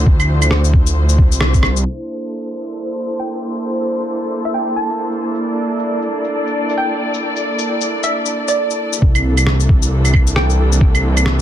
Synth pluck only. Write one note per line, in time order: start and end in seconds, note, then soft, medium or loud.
3.20 3.64 G5 medium
4.45 4.52 E5 medium
4.54 4.75 G5 medium
4.76 5.12 A5 medium
6.78 7.23 G5 medium
8.04 8.11 E5 medium
8.48 9.02 D5 medium
10.36 10.81 G5 medium